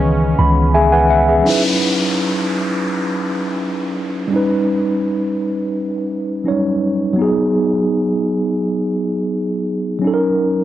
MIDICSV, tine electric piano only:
0, 0, Header, 1, 2, 480
1, 0, Start_track
1, 0, Key_signature, 4, "minor"
1, 0, Tempo, 714286
1, 979, Time_signature, 4, 2, 24, 8
1, 7151, End_track
2, 0, Start_track
2, 0, Title_t, "Tine electric piano"
2, 0, Program_c, 0, 4
2, 0, Control_c, 0, 64, 127
2, 0, Note_on_c, 0, 51, 75
2, 0, Note_on_c, 0, 52, 82
2, 0, Note_on_c, 0, 61, 74
2, 0, Note_on_c, 0, 71, 92
2, 260, Note_on_c, 0, 83, 70
2, 483, Note_off_c, 0, 83, 0
2, 487, Note_off_c, 0, 71, 0
2, 500, Note_on_c, 0, 76, 68
2, 500, Note_on_c, 0, 80, 74
2, 504, Note_on_c, 0, 68, 54
2, 611, Note_off_c, 0, 80, 0
2, 613, Note_off_c, 0, 76, 0
2, 615, Note_off_c, 0, 68, 0
2, 620, Note_on_c, 0, 78, 69
2, 620, Note_on_c, 0, 80, 70
2, 624, Note_on_c, 0, 71, 59
2, 731, Note_off_c, 0, 78, 0
2, 733, Note_off_c, 0, 80, 0
2, 735, Note_off_c, 0, 71, 0
2, 739, Note_on_c, 0, 76, 69
2, 739, Note_on_c, 0, 78, 73
2, 853, Note_off_c, 0, 76, 0
2, 853, Note_off_c, 0, 78, 0
2, 861, Note_on_c, 0, 76, 64
2, 865, Note_on_c, 0, 68, 59
2, 939, Note_off_c, 0, 52, 0
2, 948, Note_off_c, 0, 61, 0
2, 952, Note_on_c, 0, 54, 68
2, 958, Note_off_c, 0, 51, 0
2, 966, Note_on_c, 0, 61, 66
2, 980, Note_on_c, 0, 63, 66
2, 987, Control_c, 0, 64, 0
2, 994, Note_on_c, 0, 64, 64
2, 1008, Note_on_c, 0, 71, 75
2, 1088, Note_off_c, 0, 76, 0
2, 1090, Note_off_c, 0, 68, 0
2, 1124, Control_c, 0, 64, 127
2, 2858, Note_off_c, 0, 54, 0
2, 2865, Note_off_c, 0, 61, 0
2, 2873, Note_off_c, 0, 63, 0
2, 2873, Note_on_c, 0, 55, 73
2, 2880, Note_off_c, 0, 64, 0
2, 2887, Note_off_c, 0, 71, 0
2, 2891, Note_on_c, 0, 61, 66
2, 2909, Control_c, 0, 64, 0
2, 2911, Note_on_c, 0, 63, 68
2, 2929, Note_on_c, 0, 71, 78
2, 3017, Control_c, 0, 64, 127
2, 4299, Note_off_c, 0, 55, 0
2, 4308, Note_off_c, 0, 61, 0
2, 4318, Note_off_c, 0, 63, 0
2, 4327, Note_off_c, 0, 71, 0
2, 4328, Note_on_c, 0, 54, 43
2, 4337, Note_on_c, 0, 61, 51
2, 4347, Note_on_c, 0, 63, 51
2, 4356, Note_on_c, 0, 73, 55
2, 4372, Note_on_c, 0, 55, 51
2, 4377, Note_off_c, 0, 54, 0
2, 4793, Note_on_c, 0, 54, 75
2, 4812, Note_on_c, 0, 59, 65
2, 4818, Note_off_c, 0, 61, 0
2, 4823, Note_off_c, 0, 63, 0
2, 4827, Control_c, 0, 64, 0
2, 4828, Note_off_c, 0, 73, 0
2, 4830, Note_on_c, 0, 63, 65
2, 4835, Note_off_c, 0, 55, 0
2, 4849, Note_on_c, 0, 68, 80
2, 4929, Control_c, 0, 64, 127
2, 6699, Note_off_c, 0, 54, 0
2, 6709, Note_off_c, 0, 59, 0
2, 6712, Note_on_c, 0, 54, 73
2, 6718, Note_off_c, 0, 63, 0
2, 6727, Note_off_c, 0, 68, 0
2, 6731, Note_on_c, 0, 61, 69
2, 6748, Control_c, 0, 64, 0
2, 6750, Note_on_c, 0, 63, 66
2, 6769, Note_on_c, 0, 69, 64
2, 6797, Note_off_c, 0, 69, 0
2, 6812, Note_on_c, 0, 70, 82
2, 6881, Control_c, 0, 64, 127
2, 7151, Note_off_c, 0, 54, 0
2, 7151, Note_off_c, 0, 61, 0
2, 7151, Note_off_c, 0, 63, 0
2, 7151, Note_off_c, 0, 70, 0
2, 7151, End_track
0, 0, End_of_file